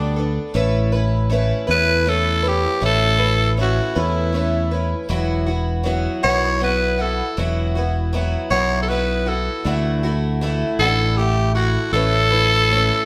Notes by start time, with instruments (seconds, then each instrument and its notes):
Already playing: fingered electric bass D2, twelve-string acoustic guitar G3 B3 D4 A4, tenor saxophone D4
0.16 twelve-string acoustic guitar B3 D4 A4
0.54 fingered electric bass A1, twelve-string acoustic guitar A3 C#4 E4 B4
0.92 twelve-string acoustic guitar C#4 E4 B4
1.30 twelve-string acoustic guitar A3 C#4 E4 B4
1.67 fingered electric bass E2, twelve-string acoustic guitar A3 C#4 E4 B4, tenor saxophone B4
2.06 twelve-string acoustic guitar A3 C#4 E4 B4, tenor saxophone A4
2.43 twelve-string acoustic guitar C#4 E4 B4
2.48 tenor saxophone G4
2.81 fingered electric bass A1, twelve-string acoustic guitar A3 C#4 E4 B4
2.86 tenor saxophone A4
3.19 twelve-string acoustic guitar C#4 E4 B4
3.57 twelve-string acoustic guitar A3 C#4 E4 B4
3.61 tenor saxophone F#4
3.95 fingered electric bass E2, twelve-string acoustic guitar A3 C#4 E4 B4, tenor saxophone E4
4.33 twelve-string acoustic guitar A3 C#4 E4 B4
4.71 twelve-string acoustic guitar C#4 E4 B4
5.09 fingered electric bass E1, twelve-string acoustic guitar E3 F#3 B3 E4 F#4
5.47 twelve-string acoustic guitar B3 E4 F#4
5.83 twelve-string acoustic guitar F#3 B3 E4 F#4
6.23 fingered electric bass B1, twelve-string acoustic guitar E3 F#3 B3 E4 F#4, tenor saxophone C#5
6.60 twelve-string acoustic guitar F#3 B3 E4 F#4, tenor saxophone B4
6.98 twelve-string acoustic guitar B3 E4 F#4, tenor saxophone A4
7.37 fingered electric bass E1, twelve-string acoustic guitar E3 F#3 B3 E4 F#4
7.75 twelve-string acoustic guitar B3 E4 F#4
8.13 twelve-string acoustic guitar F#3 B3 E4 F#4
8.51 fingered electric bass B1, twelve-string acoustic guitar E3 F#3 B3 E4 F#4, tenor saxophone C#5
8.82 tenor saxophone A4
8.88 twelve-string acoustic guitar F#3 B3 E4 F#4, tenor saxophone B4
9.26 twelve-string acoustic guitar B3 E4 F#4, tenor saxophone A4
9.65 fingered electric bass D2, twelve-string acoustic guitar D3 E3 A3 E4 F#4
10.03 twelve-string acoustic guitar A3 E4 F#4
10.41 twelve-string acoustic guitar E3 A3 E4 F#4
10.79 fingered electric bass A1, twelve-string acoustic guitar D3 E3 A3 E4 F#4, tenor saxophone A4
11.17 twelve-string acoustic guitar E3 A3 E4, tenor saxophone G4
11.55 twelve-string acoustic guitar A3 E4 F#4, tenor saxophone F#4
11.93 fingered electric bass A1, twelve-string acoustic guitar A3 C#4 E4 B4, tenor saxophone A4
12.31 twelve-string acoustic guitar C#4 E4 B4
12.71 twelve-string acoustic guitar A3 C#4 E4 B4